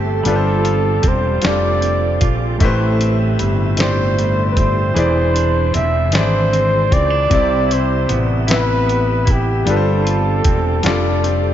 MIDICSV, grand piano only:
0, 0, Header, 1, 2, 480
1, 0, Start_track
1, 0, Tempo, 784314
1, 153, Time_signature, 6, 3, 24, 8
1, 7062, End_track
2, 0, Start_track
2, 0, Title_t, "Grand piano"
2, 0, Program_c, 0, 0
2, 0, Control_c, 0, 64, 127
2, 0, Note_on_c, 0, 57, 70
2, 0, Note_on_c, 0, 64, 63
2, 0, Note_on_c, 0, 67, 62
2, 0, Note_on_c, 0, 71, 62
2, 0, Note_on_c, 0, 72, 76
2, 152, Note_on_c, 0, 55, 73
2, 156, Note_on_c, 0, 62, 71
2, 162, Control_c, 0, 64, 0
2, 163, Note_off_c, 0, 57, 0
2, 163, Note_off_c, 0, 71, 0
2, 164, Note_off_c, 0, 67, 0
2, 164, Note_on_c, 0, 65, 69
2, 165, Note_off_c, 0, 72, 0
2, 166, Note_off_c, 0, 64, 0
2, 169, Note_on_c, 0, 69, 67
2, 179, Note_on_c, 0, 71, 70
2, 206, Note_off_c, 0, 71, 0
2, 217, Note_on_c, 0, 72, 83
2, 280, Control_c, 0, 64, 127
2, 695, Note_off_c, 0, 55, 0
2, 697, Note_off_c, 0, 62, 0
2, 701, Note_off_c, 0, 65, 0
2, 704, Note_off_c, 0, 69, 0
2, 728, Note_off_c, 0, 72, 0
2, 872, Note_on_c, 0, 55, 67
2, 881, Note_on_c, 0, 62, 61
2, 888, Note_on_c, 0, 65, 58
2, 893, Note_on_c, 0, 69, 62
2, 899, Note_on_c, 0, 72, 75
2, 1415, Note_off_c, 0, 55, 0
2, 1420, Note_off_c, 0, 62, 0
2, 1423, Note_off_c, 0, 65, 0
2, 1426, Note_off_c, 0, 69, 0
2, 1429, Note_off_c, 0, 72, 0
2, 1591, Note_on_c, 0, 57, 95
2, 1597, Note_on_c, 0, 64, 81
2, 1600, Control_c, 0, 64, 0
2, 1605, Note_on_c, 0, 67, 79
2, 1611, Note_on_c, 0, 71, 78
2, 1619, Note_on_c, 0, 72, 100
2, 1701, Control_c, 0, 64, 127
2, 2134, Note_off_c, 0, 57, 0
2, 2138, Note_off_c, 0, 64, 0
2, 2142, Note_off_c, 0, 67, 0
2, 2145, Note_off_c, 0, 71, 0
2, 2149, Note_off_c, 0, 72, 0
2, 2307, Note_on_c, 0, 57, 68
2, 2311, Note_on_c, 0, 64, 61
2, 2319, Note_on_c, 0, 67, 64
2, 2327, Note_on_c, 0, 72, 64
2, 2334, Note_on_c, 0, 74, 74
2, 2853, Note_off_c, 0, 57, 0
2, 2855, Note_off_c, 0, 64, 0
2, 2859, Note_off_c, 0, 67, 0
2, 2863, Note_off_c, 0, 72, 0
2, 2866, Note_off_c, 0, 74, 0
2, 3024, Note_on_c, 0, 52, 75
2, 3031, Note_on_c, 0, 64, 72
2, 3037, Note_on_c, 0, 68, 71
2, 3042, Control_c, 0, 64, 0
2, 3044, Note_on_c, 0, 72, 71
2, 3051, Note_on_c, 0, 74, 85
2, 3155, Control_c, 0, 64, 127
2, 3571, Note_off_c, 0, 52, 0
2, 3575, Note_off_c, 0, 64, 0
2, 3578, Note_off_c, 0, 68, 0
2, 3581, Note_off_c, 0, 72, 0
2, 3585, Note_off_c, 0, 74, 0
2, 3749, Note_on_c, 0, 52, 68
2, 3757, Note_on_c, 0, 64, 62
2, 3766, Note_on_c, 0, 68, 64
2, 3772, Note_on_c, 0, 72, 58
2, 3780, Note_on_c, 0, 74, 77
2, 4294, Note_off_c, 0, 52, 0
2, 4298, Note_off_c, 0, 64, 0
2, 4302, Note_off_c, 0, 68, 0
2, 4305, Note_off_c, 0, 72, 0
2, 4309, Note_off_c, 0, 74, 0
2, 4468, Note_on_c, 0, 48, 78
2, 4474, Note_on_c, 0, 60, 70
2, 4482, Control_c, 0, 64, 0
2, 4482, Note_on_c, 0, 64, 69
2, 4486, Note_on_c, 0, 72, 68
2, 4496, Note_on_c, 0, 74, 86
2, 4601, Control_c, 0, 64, 127
2, 5013, Note_off_c, 0, 48, 0
2, 5016, Note_off_c, 0, 60, 0
2, 5020, Note_off_c, 0, 64, 0
2, 5022, Note_off_c, 0, 72, 0
2, 5027, Note_off_c, 0, 74, 0
2, 5190, Note_on_c, 0, 48, 70
2, 5197, Note_on_c, 0, 59, 65
2, 5203, Note_on_c, 0, 64, 60
2, 5211, Note_on_c, 0, 71, 65
2, 5218, Note_on_c, 0, 76, 81
2, 5734, Note_off_c, 0, 48, 0
2, 5738, Note_off_c, 0, 59, 0
2, 5741, Note_off_c, 0, 64, 0
2, 5744, Note_off_c, 0, 71, 0
2, 5748, Note_off_c, 0, 76, 0
2, 5907, Note_on_c, 0, 55, 77
2, 5911, Note_on_c, 0, 62, 68
2, 5919, Note_on_c, 0, 65, 70
2, 5921, Control_c, 0, 64, 0
2, 5926, Note_on_c, 0, 69, 70
2, 5932, Note_on_c, 0, 71, 73
2, 5962, Note_off_c, 0, 71, 0
2, 5975, Note_on_c, 0, 72, 86
2, 6017, Control_c, 0, 64, 127
2, 6452, Note_off_c, 0, 55, 0
2, 6455, Note_off_c, 0, 62, 0
2, 6458, Note_off_c, 0, 65, 0
2, 6462, Note_off_c, 0, 69, 0
2, 6487, Note_off_c, 0, 72, 0
2, 6626, Note_on_c, 0, 55, 81
2, 6634, Note_on_c, 0, 62, 77
2, 6639, Note_on_c, 0, 65, 72
2, 6648, Note_on_c, 0, 69, 72
2, 6655, Note_on_c, 0, 74, 84
2, 7062, Note_off_c, 0, 55, 0
2, 7062, Note_off_c, 0, 62, 0
2, 7062, Note_off_c, 0, 65, 0
2, 7062, Note_off_c, 0, 69, 0
2, 7062, Note_off_c, 0, 74, 0
2, 7062, End_track
0, 0, End_of_file